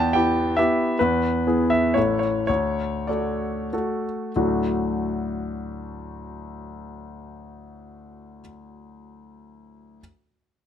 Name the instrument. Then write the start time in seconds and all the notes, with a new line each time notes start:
grand piano
Already playing: E2 G5 A5
0.13 B3 E4 G4 G5
0.57 B3 E4 G4 E5
0.99 E2 B4
1.47 B3 E4 G#4
1.70 E5
1.94 A1 A3 E4 A4 C#5
2.19 C#5
2.47 D2 C#5
3.07 A3 F#4 A4 D5
3.73 A3 F#4 A4
4.36 D2 A2 F#3 A3 D4 F#4